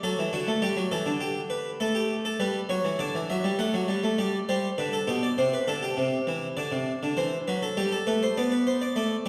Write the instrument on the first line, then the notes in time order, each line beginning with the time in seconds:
harpsichord
0.03 F#3 A4
0.19 E3
0.33 D3 F#4
0.48 A3
0.62 G3 G4
0.77 F#3
0.91 E3 A4
1.06 D3
1.20 G4
1.50 B4
1.80 A3 A4
1.95 G4
2.25 A4
2.40 G3 B4
2.69 F#3 C#5
2.85 E3
2.99 D3 D5
3.15 E3
3.30 F#3 E5
3.44 G3
3.59 A3 F#5
3.74 F#3
3.88 G3
4.04 A3
4.18 G3 D5
4.49 G3 C5
4.78 D3 B4
4.93 A4
5.07 B2 G4
5.23 D5
5.38 C3 C5
5.53 B4
5.68 D3 A4
5.83 G4
5.97 C3
6.27 E3
6.57 D3 D5
6.72 C3
7.03 D3
7.17 E3 C5
7.48 F#3 B4
7.63 A4
7.77 G3 G4
7.92 A4
8.07 A3 B4
8.23 C5
8.37 B3 D5
8.52 B4
8.67 C5
8.82 D5
8.96 A3 D5